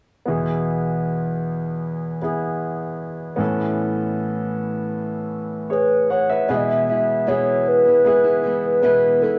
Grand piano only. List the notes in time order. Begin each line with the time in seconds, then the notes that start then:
0.25 E2 B2 B3 E4
0.30 G#4
2.22 B3 E4 G#4
3.36 A2 E3 B3 C#4
3.40 A4
5.70 G#4 C#5
6.10 C#5 F#5
6.30 B4 E5
6.49 B2 B3 E4 G#4
7.27 B3 E4 G#4
8.05 B3 E4 G#4
8.82 B3 E4 B4